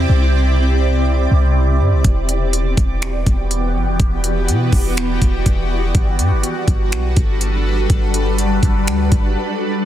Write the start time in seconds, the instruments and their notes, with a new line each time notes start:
Already playing: ambient pad C3 C4 E4 G4 D5
0.09 808-style bass C2
1.31 808-style bass C2
1.80 808-style bass G2
1.92 808-style bass C2
2.04 808-style bass E1, ambient pad E3 B3 F#4 G4, kick, closed hi-hat
2.29 closed hi-hat
2.53 closed hi-hat
2.77 808-style bass E1, kick, closed hi-hat
3.02 finger snap, closed hi-hat
3.26 808-style bass E1, kick, closed hi-hat
3.51 closed hi-hat
3.75 808-style bass G1
3.87 808-style bass E1
4.00 808-style bass E1, kick, closed hi-hat
4.24 closed hi-hat
4.48 808-style bass B2, closed hi-hat
4.72 808-style bass E1, kick, open hi-hat
4.97 finger snap, closed hi-hat
5.22 808-style bass E1, kick, closed hi-hat
5.46 808-style bass E1, kick, closed hi-hat
5.95 808-style bass G1, ambient pad G3 D4 A4 B4, kick, closed hi-hat
6.19 808-style bass G2, closed hi-hat
6.31 808-style bass G1
6.43 closed hi-hat
6.68 808-style bass G1, kick, closed hi-hat
6.92 808-style bass B1, finger snap, closed hi-hat
7.17 808-style bass G1, kick, closed hi-hat
7.41 closed hi-hat
7.90 808-style bass G1, kick, closed hi-hat
8.14 closed hi-hat
8.38 closed hi-hat
8.63 808-style bass G1, kick, closed hi-hat
8.87 808-style bass D2, finger snap, closed hi-hat
9.12 808-style bass G1, kick, closed hi-hat